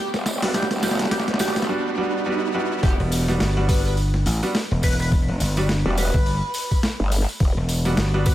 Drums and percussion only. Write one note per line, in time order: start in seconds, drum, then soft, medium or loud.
0.14 snare medium
0.14 tambourine soft
0.26 snare loud
0.26 tambourine medium
0.42 snare medium
0.42 closed hi-hat medium
0.42 open hi-hat medium
0.42 tambourine soft
0.54 kick loud
0.54 snare loud
0.54 closed hi-hat medium
0.54 tambourine medium
0.62 snare medium
0.71 snare medium
0.71 closed hi-hat soft
0.71 tambourine soft
0.77 snare soft
0.80 snare soft
0.83 snare loud
0.83 tambourine medium
0.87 snare medium
0.91 snare medium
0.95 snare medium
0.99 snare medium
0.99 closed hi-hat medium
0.99 tambourine soft
1.02 snare medium
1.05 snare medium
1.11 kick loud
1.11 snare loud
1.11 closed hi-hat medium
1.11 tambourine medium
1.20 snare medium
1.28 snare medium
1.28 closed hi-hat soft
1.34 snare medium
1.39 snare loud
1.39 open hi-hat medium
1.39 tambourine loud
1.43 open hi-hat medium
1.45 snare loud
1.45 open hi-hat soft
1.48 open hi-hat soft
1.54 snare medium
1.54 closed hi-hat medium
1.54 open hi-hat soft
1.54 tambourine soft
1.62 snare medium
2.83 kick loud
2.83 open hi-hat soft
2.83 tambourine soft
2.89 closed hi-hat soft
3.00 open hi-hat soft
3.12 open hi-hat medium
3.12 tambourine loud
3.28 snare medium
3.28 open hi-hat soft
3.28 tambourine soft
3.40 snare loud
3.40 open hi-hat soft
3.40 tambourine soft
3.57 open hi-hat soft
3.69 kick loud
3.69 open hi-hat medium
3.69 tambourine medium
3.85 open hi-hat soft
3.85 tambourine soft
3.97 open hi-hat soft
3.97 tambourine soft
4.14 snare soft
4.14 open hi-hat soft
4.26 open hi-hat medium
4.26 tambourine medium
4.43 open hi-hat soft
4.43 tambourine medium
4.55 snare loud
4.55 open hi-hat soft
4.55 tambourine soft
4.71 open hi-hat soft
4.83 kick medium
4.83 open hi-hat medium
4.83 tambourine medium
4.93 open hi-hat medium
4.99 open hi-hat soft
4.99 tambourine medium
5.02 open hi-hat soft
5.12 kick loud
5.12 snare soft
5.12 open hi-hat soft
5.12 tambourine soft
5.28 open hi-hat soft
5.40 open hi-hat medium
5.40 tambourine medium
5.57 snare medium
5.57 open hi-hat soft
5.57 tambourine medium
5.69 snare loud
5.69 open hi-hat soft
5.69 tambourine soft
5.86 open hi-hat soft
5.98 open hi-hat medium
5.98 tambourine loud
6.14 kick loud
6.14 open hi-hat soft
6.14 tambourine medium
6.26 open hi-hat soft
6.26 tambourine soft
6.43 open hi-hat soft
6.54 open hi-hat medium
6.54 tambourine medium
6.71 kick medium
6.71 open hi-hat soft
6.71 tambourine medium
6.83 snare loud
6.83 open hi-hat soft
6.83 tambourine soft
6.86 open hi-hat soft
6.89 open hi-hat soft
6.92 open hi-hat soft
6.97 open hi-hat soft
7.00 open hi-hat soft
7.12 open hi-hat medium
7.12 tambourine medium
7.28 open hi-hat soft
7.28 tambourine medium
7.40 kick loud
7.40 open hi-hat soft
7.40 tambourine soft
7.57 open hi-hat soft
7.69 open hi-hat medium
7.69 tambourine loud
7.85 snare soft
7.85 open hi-hat soft
7.85 tambourine medium
7.97 snare loud
7.97 open hi-hat soft
7.97 tambourine soft
8.14 open hi-hat soft
8.26 kick loud
8.26 open hi-hat medium
8.26 tambourine loud